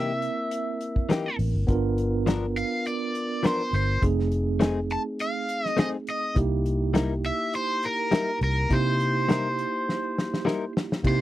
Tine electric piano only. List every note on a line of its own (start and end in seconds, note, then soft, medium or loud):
0.00 1.63 A#3 medium
0.00 1.64 C4 medium
0.00 1.64 E4 medium
0.00 1.65 A#4 medium
1.67 3.98 B3 medium
1.67 3.98 D4 medium
1.67 3.98 F4 medium
1.67 3.99 A#4 medium
4.01 6.32 A3 medium
4.01 6.32 C4 medium
4.01 6.33 D#4 medium
4.01 6.33 G#4 medium
6.35 8.65 A#3 medium
6.35 8.66 D#4 medium
6.35 8.66 E4 medium
6.35 8.67 G4 medium
8.69 11.00 A#3 medium
8.69 11.00 D#4 medium
8.69 11.01 E4 medium
8.69 11.01 G4 medium
11.03 11.21 A#3 medium
11.03 11.21 D#4 medium
11.03 11.21 E4 medium
11.03 11.21 G4 medium